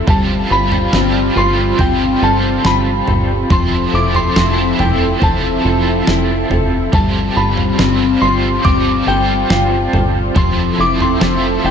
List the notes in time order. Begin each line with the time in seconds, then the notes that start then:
Already playing: C4 E4 A4
0.07 G1 G3 C4 F4 G4 A4 A5, kick, floor tom
0.50 G1 F4 B5
0.72 floor tom
0.93 G1 C4 F4 G4 A4, snare
1.36 G1 F4 C6
1.78 G1 C4 F4 G5, kick, floor tom
1.83 G4 A4
2.22 G1 A4 A5
2.65 G1 F4 B5, snare
3.08 G1 A4, floor tom
3.50 F1 F3 C4 E4 F4 A4 E5 C6, kick, floor tom
3.93 F1 E4 D6
4.15 C6, floor tom
4.36 F1 C4 E4 F4 A4, snare
4.79 F1 E4 G5, floor tom
5.20 F1 C4 F4 A5, kick, floor tom
5.25 E4 A4
5.65 F1 A4
6.07 F1 E4, snare
6.50 F1 A4, floor tom
6.92 G1 G3 C4 F4 G4 A4 A5, kick, floor tom
7.36 G1 F4 B5
7.57 floor tom
7.78 G1 C4 F4 G4 A4, snare
8.21 G1 F4 C6
8.62 G1 C4 F4 D6, kick, floor tom
8.68 G4 A4
9.07 G1 A4 G5
9.50 G1 F4, snare
9.93 G1 A4, floor tom
10.35 F1 F3 C4 E4 F4 A4 E5 C6, kick, floor tom
10.79 F1 E4 D6
11.01 C6, floor tom
11.21 F1 C4 E4 F4 A4, snare
11.64 F1 E4 G5